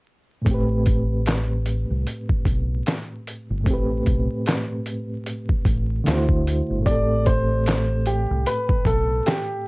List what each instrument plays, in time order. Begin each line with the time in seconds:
0.42 reed electric piano A2 A3
0.46 fingered electric bass A1, reed electric piano C4, kick, closed hi-hat
0.51 reed electric piano G4 B4
0.86 kick, closed hi-hat
1.26 snare, clap, closed hi-hat
1.66 closed hi-hat
1.90 fingered electric bass C2
2.07 closed hi-hat
2.29 kick
2.45 fingered electric bass B1, kick, closed hi-hat
2.86 snare, clap, closed hi-hat
3.27 closed hi-hat
3.50 fingered electric bass G1
3.61 reed electric piano A2 A3
3.66 fingered electric bass A1, reed electric piano C4, kick, closed hi-hat
3.71 reed electric piano G4 B4
4.06 fingered electric bass B1, kick, closed hi-hat
4.46 snare, clap, closed hi-hat
4.86 closed hi-hat
5.26 closed hi-hat
5.49 muted fingered electric bass stroke, kick
5.65 fingered electric bass A1, kick, closed hi-hat
6.04 fingered electric bass D2, reed electric piano D3 A3 E4, closed hi-hat
6.08 reed electric piano F#4 C5, snare, clap
6.29 kick
6.47 closed hi-hat
6.70 fingered electric bass G1
6.79 reed electric piano A2 A3
6.85 fingered electric bass A1, reed electric piano C4 G4, upright piano D5, kick, closed hi-hat
6.91 reed electric piano A4
7.26 upright piano C5, kick, closed hi-hat
7.66 snare, clap, closed hi-hat
8.06 upright piano G4, closed hi-hat
8.31 fingered electric bass C2
8.46 upright piano B4, closed hi-hat
8.69 kick
8.85 fingered electric bass B1, upright piano A4, kick, closed hi-hat
9.26 upright piano G4, snare, clap, closed hi-hat